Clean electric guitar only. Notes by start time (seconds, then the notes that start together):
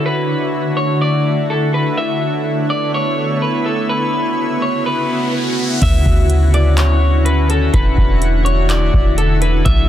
0.06 B4
0.77 C#5
1.01 D5
1.50 A4
1.74 B4
1.98 E5
2.70 D5
2.94 C#5
3.42 B4
3.66 A4
3.89 B4
4.62 C#5
4.86 B4
5.82 E5
6.54 D5
6.78 C#5
7.25 B4
7.50 A4
7.74 B4
8.45 C#5
8.70 D5
9.18 A4
9.42 B4
9.65 E5